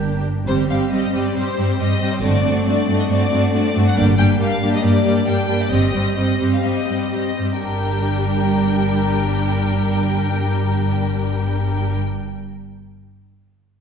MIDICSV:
0, 0, Header, 1, 7, 480
1, 0, Start_track
1, 0, Key_signature, -2, "minor"
1, 0, Tempo, 449438
1, 498, Time_signature, 4, 2, 24, 8
1, 1445, Tempo, 434468
1, 5765, Tempo, 452489
1, 6725, Tempo, 491803
1, 14180, End_track
2, 0, Start_track
2, 0, Title_t, "Oboe"
2, 0, Program_c, 0, 68
2, 0, Note_on_c, 0, 79, 58
2, 217, Note_off_c, 0, 79, 0
2, 14180, End_track
3, 0, Start_track
3, 0, Title_t, "Violin section"
3, 0, Program_c, 1, 48
3, 0, Note_on_c, 1, 70, 42
3, 283, Note_off_c, 1, 70, 0
3, 507, Note_on_c, 1, 72, 62
3, 592, Note_off_c, 1, 72, 0
3, 740, Note_on_c, 1, 77, 56
3, 825, Note_off_c, 1, 77, 0
3, 983, Note_on_c, 1, 75, 41
3, 1325, Note_off_c, 1, 75, 0
3, 1343, Note_on_c, 1, 74, 45
3, 1451, Note_off_c, 1, 74, 0
3, 1466, Note_on_c, 1, 72, 54
3, 1932, Note_off_c, 1, 72, 0
3, 1944, Note_on_c, 1, 75, 52
3, 2293, Note_off_c, 1, 75, 0
3, 2309, Note_on_c, 1, 72, 48
3, 2418, Note_on_c, 1, 74, 60
3, 2421, Note_off_c, 1, 72, 0
3, 2883, Note_off_c, 1, 74, 0
3, 2908, Note_on_c, 1, 74, 57
3, 3250, Note_off_c, 1, 74, 0
3, 3255, Note_on_c, 1, 75, 48
3, 3302, Note_off_c, 1, 75, 0
3, 3378, Note_on_c, 1, 74, 62
3, 3846, Note_off_c, 1, 74, 0
3, 3861, Note_on_c, 1, 74, 60
3, 4205, Note_off_c, 1, 74, 0
3, 4226, Note_on_c, 1, 78, 56
3, 4331, Note_on_c, 1, 74, 69
3, 4333, Note_off_c, 1, 78, 0
3, 4419, Note_off_c, 1, 74, 0
3, 4579, Note_on_c, 1, 79, 72
3, 4668, Note_off_c, 1, 79, 0
3, 4820, Note_on_c, 1, 77, 69
3, 5165, Note_off_c, 1, 77, 0
3, 5191, Note_on_c, 1, 75, 59
3, 5295, Note_off_c, 1, 75, 0
3, 5300, Note_on_c, 1, 74, 57
3, 5764, Note_off_c, 1, 74, 0
3, 5784, Note_on_c, 1, 79, 65
3, 6129, Note_off_c, 1, 79, 0
3, 6136, Note_on_c, 1, 74, 49
3, 6238, Note_on_c, 1, 75, 63
3, 6248, Note_off_c, 1, 74, 0
3, 6709, Note_off_c, 1, 75, 0
3, 6722, Note_on_c, 1, 75, 47
3, 7061, Note_off_c, 1, 75, 0
3, 7079, Note_on_c, 1, 77, 46
3, 7189, Note_off_c, 1, 77, 0
3, 7189, Note_on_c, 1, 75, 48
3, 7665, Note_off_c, 1, 75, 0
3, 7677, Note_on_c, 1, 75, 38
3, 8041, Note_off_c, 1, 75, 0
3, 8060, Note_on_c, 1, 79, 32
3, 8164, Note_off_c, 1, 79, 0
3, 8176, Note_on_c, 1, 79, 43
3, 12393, Note_off_c, 1, 79, 0
3, 14180, End_track
4, 0, Start_track
4, 0, Title_t, "Violin section"
4, 0, Program_c, 2, 48
4, 0, Note_on_c, 2, 67, 36
4, 246, Note_off_c, 2, 67, 0
4, 507, Note_on_c, 2, 60, 37
4, 508, Note_on_c, 2, 67, 40
4, 736, Note_off_c, 2, 60, 0
4, 737, Note_off_c, 2, 67, 0
4, 755, Note_on_c, 2, 60, 32
4, 758, Note_on_c, 2, 67, 38
4, 978, Note_off_c, 2, 60, 0
4, 980, Note_off_c, 2, 67, 0
4, 992, Note_on_c, 2, 67, 37
4, 994, Note_on_c, 2, 60, 35
4, 1206, Note_off_c, 2, 60, 0
4, 1208, Note_off_c, 2, 67, 0
4, 1219, Note_on_c, 2, 60, 40
4, 1221, Note_on_c, 2, 67, 38
4, 1440, Note_off_c, 2, 60, 0
4, 1441, Note_off_c, 2, 67, 0
4, 1453, Note_on_c, 2, 60, 36
4, 1455, Note_on_c, 2, 67, 35
4, 1684, Note_off_c, 2, 60, 0
4, 1686, Note_off_c, 2, 67, 0
4, 1697, Note_on_c, 2, 60, 35
4, 1699, Note_on_c, 2, 67, 37
4, 1923, Note_off_c, 2, 60, 0
4, 1923, Note_off_c, 2, 67, 0
4, 1936, Note_on_c, 2, 60, 36
4, 1936, Note_on_c, 2, 67, 36
4, 2167, Note_off_c, 2, 60, 0
4, 2171, Note_off_c, 2, 67, 0
4, 2180, Note_on_c, 2, 60, 35
4, 2185, Note_on_c, 2, 67, 36
4, 2412, Note_off_c, 2, 60, 0
4, 2415, Note_off_c, 2, 67, 0
4, 2417, Note_on_c, 2, 62, 41
4, 2417, Note_on_c, 2, 66, 42
4, 2640, Note_off_c, 2, 62, 0
4, 2644, Note_off_c, 2, 66, 0
4, 2653, Note_on_c, 2, 62, 38
4, 2658, Note_on_c, 2, 66, 37
4, 2886, Note_off_c, 2, 62, 0
4, 2889, Note_off_c, 2, 66, 0
4, 2904, Note_on_c, 2, 62, 43
4, 2904, Note_on_c, 2, 66, 37
4, 3131, Note_off_c, 2, 62, 0
4, 3131, Note_off_c, 2, 66, 0
4, 3154, Note_on_c, 2, 62, 43
4, 3156, Note_on_c, 2, 66, 44
4, 3363, Note_off_c, 2, 62, 0
4, 3365, Note_off_c, 2, 66, 0
4, 3376, Note_on_c, 2, 62, 41
4, 3378, Note_on_c, 2, 66, 43
4, 3609, Note_off_c, 2, 62, 0
4, 3610, Note_off_c, 2, 66, 0
4, 3632, Note_on_c, 2, 62, 43
4, 3632, Note_on_c, 2, 66, 40
4, 3843, Note_off_c, 2, 66, 0
4, 3846, Note_off_c, 2, 62, 0
4, 3856, Note_on_c, 2, 66, 39
4, 3859, Note_on_c, 2, 62, 41
4, 4078, Note_off_c, 2, 62, 0
4, 4087, Note_off_c, 2, 66, 0
4, 4092, Note_on_c, 2, 62, 44
4, 4104, Note_on_c, 2, 66, 45
4, 4311, Note_off_c, 2, 62, 0
4, 4321, Note_on_c, 2, 67, 44
4, 4325, Note_on_c, 2, 62, 45
4, 4329, Note_off_c, 2, 66, 0
4, 4552, Note_off_c, 2, 62, 0
4, 4557, Note_off_c, 2, 67, 0
4, 4565, Note_on_c, 2, 62, 41
4, 4572, Note_on_c, 2, 67, 41
4, 4800, Note_off_c, 2, 62, 0
4, 4803, Note_off_c, 2, 67, 0
4, 4814, Note_on_c, 2, 62, 45
4, 4814, Note_on_c, 2, 67, 44
4, 5042, Note_off_c, 2, 62, 0
4, 5042, Note_off_c, 2, 67, 0
4, 5055, Note_on_c, 2, 62, 46
4, 5055, Note_on_c, 2, 67, 47
4, 5271, Note_off_c, 2, 67, 0
4, 5277, Note_off_c, 2, 62, 0
4, 5285, Note_on_c, 2, 67, 43
4, 5291, Note_on_c, 2, 62, 42
4, 5520, Note_off_c, 2, 67, 0
4, 5523, Note_off_c, 2, 62, 0
4, 5538, Note_on_c, 2, 62, 41
4, 5538, Note_on_c, 2, 67, 39
4, 5759, Note_off_c, 2, 62, 0
4, 5759, Note_off_c, 2, 67, 0
4, 5772, Note_on_c, 2, 62, 41
4, 5772, Note_on_c, 2, 67, 34
4, 5985, Note_off_c, 2, 62, 0
4, 5993, Note_off_c, 2, 67, 0
4, 5998, Note_on_c, 2, 62, 39
4, 6006, Note_on_c, 2, 67, 35
4, 6229, Note_off_c, 2, 67, 0
4, 6234, Note_off_c, 2, 62, 0
4, 6242, Note_on_c, 2, 67, 41
4, 6248, Note_on_c, 2, 60, 38
4, 6473, Note_off_c, 2, 67, 0
4, 6475, Note_off_c, 2, 60, 0
4, 6486, Note_on_c, 2, 67, 31
4, 6488, Note_on_c, 2, 60, 35
4, 6719, Note_off_c, 2, 67, 0
4, 6721, Note_off_c, 2, 60, 0
4, 6731, Note_on_c, 2, 67, 33
4, 6733, Note_on_c, 2, 60, 35
4, 6950, Note_off_c, 2, 60, 0
4, 6952, Note_off_c, 2, 67, 0
4, 6962, Note_on_c, 2, 60, 34
4, 6963, Note_on_c, 2, 67, 35
4, 7174, Note_off_c, 2, 60, 0
4, 7174, Note_off_c, 2, 67, 0
4, 7185, Note_on_c, 2, 67, 30
4, 7186, Note_on_c, 2, 60, 31
4, 7419, Note_off_c, 2, 60, 0
4, 7419, Note_off_c, 2, 67, 0
4, 7429, Note_on_c, 2, 60, 28
4, 7429, Note_on_c, 2, 67, 28
4, 7660, Note_off_c, 2, 67, 0
4, 7661, Note_off_c, 2, 60, 0
4, 7672, Note_on_c, 2, 67, 27
4, 7673, Note_on_c, 2, 60, 26
4, 7897, Note_off_c, 2, 60, 0
4, 7903, Note_off_c, 2, 67, 0
4, 7909, Note_on_c, 2, 60, 25
4, 7915, Note_on_c, 2, 67, 25
4, 8149, Note_off_c, 2, 67, 0
4, 8157, Note_off_c, 2, 60, 0
4, 8158, Note_on_c, 2, 70, 32
4, 8161, Note_on_c, 2, 67, 30
4, 12375, Note_off_c, 2, 70, 0
4, 12378, Note_off_c, 2, 67, 0
4, 14180, End_track
5, 0, Start_track
5, 0, Title_t, "Viola section"
5, 0, Program_c, 3, 48
5, 0, Note_on_c, 3, 62, 36
5, 244, Note_off_c, 3, 62, 0
5, 501, Note_on_c, 3, 60, 38
5, 502, Note_on_c, 3, 55, 36
5, 720, Note_off_c, 3, 55, 0
5, 723, Note_off_c, 3, 60, 0
5, 733, Note_on_c, 3, 55, 35
5, 736, Note_on_c, 3, 60, 35
5, 964, Note_off_c, 3, 55, 0
5, 968, Note_off_c, 3, 60, 0
5, 977, Note_on_c, 3, 55, 36
5, 979, Note_on_c, 3, 60, 34
5, 1186, Note_off_c, 3, 60, 0
5, 1191, Note_off_c, 3, 55, 0
5, 1199, Note_on_c, 3, 60, 33
5, 1204, Note_on_c, 3, 55, 35
5, 1426, Note_off_c, 3, 55, 0
5, 1427, Note_off_c, 3, 60, 0
5, 1439, Note_on_c, 3, 55, 34
5, 1440, Note_on_c, 3, 60, 35
5, 1670, Note_off_c, 3, 55, 0
5, 1672, Note_off_c, 3, 60, 0
5, 1683, Note_on_c, 3, 55, 37
5, 1685, Note_on_c, 3, 60, 37
5, 1910, Note_off_c, 3, 60, 0
5, 1914, Note_off_c, 3, 55, 0
5, 1923, Note_on_c, 3, 60, 36
5, 1927, Note_on_c, 3, 55, 36
5, 2152, Note_off_c, 3, 60, 0
5, 2154, Note_off_c, 3, 55, 0
5, 2165, Note_on_c, 3, 60, 39
5, 2167, Note_on_c, 3, 55, 36
5, 2395, Note_off_c, 3, 60, 0
5, 2405, Note_off_c, 3, 55, 0
5, 2408, Note_on_c, 3, 60, 39
5, 2410, Note_on_c, 3, 57, 41
5, 2637, Note_off_c, 3, 60, 0
5, 2641, Note_off_c, 3, 57, 0
5, 2651, Note_on_c, 3, 60, 40
5, 2654, Note_on_c, 3, 57, 39
5, 2885, Note_off_c, 3, 60, 0
5, 2887, Note_off_c, 3, 57, 0
5, 2902, Note_on_c, 3, 57, 36
5, 2902, Note_on_c, 3, 60, 36
5, 3122, Note_off_c, 3, 60, 0
5, 3124, Note_off_c, 3, 57, 0
5, 3135, Note_on_c, 3, 60, 38
5, 3138, Note_on_c, 3, 57, 39
5, 3364, Note_off_c, 3, 57, 0
5, 3368, Note_off_c, 3, 60, 0
5, 3378, Note_on_c, 3, 57, 41
5, 3381, Note_on_c, 3, 60, 45
5, 3596, Note_off_c, 3, 57, 0
5, 3600, Note_off_c, 3, 60, 0
5, 3610, Note_on_c, 3, 57, 40
5, 3614, Note_on_c, 3, 60, 43
5, 3836, Note_off_c, 3, 57, 0
5, 3837, Note_off_c, 3, 60, 0
5, 3850, Note_on_c, 3, 57, 41
5, 3850, Note_on_c, 3, 60, 41
5, 4072, Note_off_c, 3, 57, 0
5, 4073, Note_off_c, 3, 60, 0
5, 4085, Note_on_c, 3, 57, 40
5, 4087, Note_on_c, 3, 60, 40
5, 4317, Note_on_c, 3, 55, 45
5, 4320, Note_off_c, 3, 57, 0
5, 4321, Note_off_c, 3, 60, 0
5, 4323, Note_on_c, 3, 58, 49
5, 4542, Note_off_c, 3, 58, 0
5, 4546, Note_off_c, 3, 55, 0
5, 4555, Note_on_c, 3, 58, 42
5, 4559, Note_on_c, 3, 55, 41
5, 4790, Note_off_c, 3, 58, 0
5, 4792, Note_off_c, 3, 55, 0
5, 4803, Note_on_c, 3, 58, 41
5, 4805, Note_on_c, 3, 55, 36
5, 5033, Note_off_c, 3, 58, 0
5, 5035, Note_off_c, 3, 55, 0
5, 5046, Note_on_c, 3, 58, 41
5, 5049, Note_on_c, 3, 55, 40
5, 5268, Note_off_c, 3, 55, 0
5, 5268, Note_off_c, 3, 58, 0
5, 5281, Note_on_c, 3, 55, 41
5, 5282, Note_on_c, 3, 58, 41
5, 5512, Note_off_c, 3, 58, 0
5, 5513, Note_off_c, 3, 55, 0
5, 5526, Note_on_c, 3, 58, 44
5, 5527, Note_on_c, 3, 55, 44
5, 5756, Note_off_c, 3, 55, 0
5, 5757, Note_off_c, 3, 58, 0
5, 5769, Note_on_c, 3, 55, 38
5, 5770, Note_on_c, 3, 58, 39
5, 5990, Note_off_c, 3, 55, 0
5, 5990, Note_off_c, 3, 58, 0
5, 6002, Note_on_c, 3, 58, 35
5, 6003, Note_on_c, 3, 55, 35
5, 6236, Note_off_c, 3, 55, 0
5, 6236, Note_off_c, 3, 58, 0
5, 6249, Note_on_c, 3, 55, 37
5, 6250, Note_on_c, 3, 60, 42
5, 6473, Note_off_c, 3, 55, 0
5, 6479, Note_off_c, 3, 60, 0
5, 6485, Note_on_c, 3, 55, 37
5, 6491, Note_on_c, 3, 60, 36
5, 6723, Note_off_c, 3, 55, 0
5, 6723, Note_off_c, 3, 60, 0
5, 6734, Note_on_c, 3, 55, 33
5, 6735, Note_on_c, 3, 60, 36
5, 6942, Note_off_c, 3, 60, 0
5, 6943, Note_off_c, 3, 55, 0
5, 6954, Note_on_c, 3, 60, 31
5, 6955, Note_on_c, 3, 55, 31
5, 7179, Note_off_c, 3, 55, 0
5, 7179, Note_off_c, 3, 60, 0
5, 7190, Note_on_c, 3, 60, 31
5, 7191, Note_on_c, 3, 55, 29
5, 7409, Note_off_c, 3, 55, 0
5, 7410, Note_off_c, 3, 60, 0
5, 7421, Note_on_c, 3, 55, 31
5, 7422, Note_on_c, 3, 60, 28
5, 7645, Note_off_c, 3, 60, 0
5, 7650, Note_off_c, 3, 55, 0
5, 7657, Note_on_c, 3, 60, 28
5, 7661, Note_on_c, 3, 55, 24
5, 7893, Note_off_c, 3, 60, 0
5, 7898, Note_off_c, 3, 55, 0
5, 7905, Note_on_c, 3, 60, 22
5, 7910, Note_on_c, 3, 55, 24
5, 8145, Note_off_c, 3, 55, 0
5, 8154, Note_on_c, 3, 62, 31
5, 8155, Note_off_c, 3, 60, 0
5, 8156, Note_on_c, 3, 55, 31
5, 12372, Note_off_c, 3, 62, 0
5, 12374, Note_off_c, 3, 55, 0
5, 14180, End_track
6, 0, Start_track
6, 0, Title_t, "Cello section"
6, 0, Program_c, 4, 48
6, 0, Note_on_c, 4, 43, 31
6, 244, Note_off_c, 4, 43, 0
6, 505, Note_on_c, 4, 43, 39
6, 590, Note_off_c, 4, 43, 0
6, 749, Note_on_c, 4, 43, 33
6, 834, Note_off_c, 4, 43, 0
6, 989, Note_on_c, 4, 43, 43
6, 1074, Note_off_c, 4, 43, 0
6, 1224, Note_on_c, 4, 43, 42
6, 1310, Note_off_c, 4, 43, 0
6, 1460, Note_on_c, 4, 43, 45
6, 1548, Note_off_c, 4, 43, 0
6, 1705, Note_on_c, 4, 43, 41
6, 1794, Note_off_c, 4, 43, 0
6, 1938, Note_on_c, 4, 43, 40
6, 2027, Note_off_c, 4, 43, 0
6, 2183, Note_on_c, 4, 43, 45
6, 2271, Note_off_c, 4, 43, 0
6, 2426, Note_on_c, 4, 43, 43
6, 2515, Note_off_c, 4, 43, 0
6, 2656, Note_on_c, 4, 43, 38
6, 2745, Note_off_c, 4, 43, 0
6, 2897, Note_on_c, 4, 43, 45
6, 2986, Note_off_c, 4, 43, 0
6, 3135, Note_on_c, 4, 43, 47
6, 3223, Note_off_c, 4, 43, 0
6, 3375, Note_on_c, 4, 43, 46
6, 3464, Note_off_c, 4, 43, 0
6, 3621, Note_on_c, 4, 43, 42
6, 3709, Note_off_c, 4, 43, 0
6, 3861, Note_on_c, 4, 43, 46
6, 3949, Note_off_c, 4, 43, 0
6, 4100, Note_on_c, 4, 43, 45
6, 4189, Note_off_c, 4, 43, 0
6, 4339, Note_on_c, 4, 43, 48
6, 4427, Note_off_c, 4, 43, 0
6, 4570, Note_on_c, 4, 43, 45
6, 4659, Note_off_c, 4, 43, 0
6, 4815, Note_on_c, 4, 43, 56
6, 4904, Note_off_c, 4, 43, 0
6, 5060, Note_on_c, 4, 43, 46
6, 5148, Note_off_c, 4, 43, 0
6, 5299, Note_on_c, 4, 43, 50
6, 5387, Note_off_c, 4, 43, 0
6, 5538, Note_on_c, 4, 43, 48
6, 5627, Note_off_c, 4, 43, 0
6, 5777, Note_on_c, 4, 43, 48
6, 5862, Note_off_c, 4, 43, 0
6, 6008, Note_on_c, 4, 43, 41
6, 6093, Note_off_c, 4, 43, 0
6, 6251, Note_on_c, 4, 43, 42
6, 6336, Note_off_c, 4, 43, 0
6, 6485, Note_on_c, 4, 43, 34
6, 6570, Note_off_c, 4, 43, 0
6, 6734, Note_on_c, 4, 43, 43
6, 6812, Note_off_c, 4, 43, 0
6, 6966, Note_on_c, 4, 43, 39
6, 7044, Note_off_c, 4, 43, 0
6, 7201, Note_on_c, 4, 43, 36
6, 7279, Note_off_c, 4, 43, 0
6, 7435, Note_on_c, 4, 43, 32
6, 7513, Note_off_c, 4, 43, 0
6, 7676, Note_on_c, 4, 43, 30
6, 7754, Note_off_c, 4, 43, 0
6, 7921, Note_on_c, 4, 43, 27
6, 7999, Note_off_c, 4, 43, 0
6, 8173, Note_on_c, 4, 43, 31
6, 12391, Note_off_c, 4, 43, 0
6, 14180, End_track
7, 0, Start_track
7, 0, Title_t, "Double bass section"
7, 0, Program_c, 5, 48
7, 0, Note_on_c, 5, 31, 39
7, 244, Note_off_c, 5, 31, 0
7, 501, Note_on_c, 5, 31, 44
7, 721, Note_off_c, 5, 31, 0
7, 2423, Note_on_c, 5, 31, 46
7, 2641, Note_off_c, 5, 31, 0
7, 4327, Note_on_c, 5, 31, 55
7, 4549, Note_off_c, 5, 31, 0
7, 6243, Note_on_c, 5, 31, 43
7, 6466, Note_off_c, 5, 31, 0
7, 8165, Note_on_c, 5, 31, 33
7, 12383, Note_off_c, 5, 31, 0
7, 14180, End_track
0, 0, End_of_file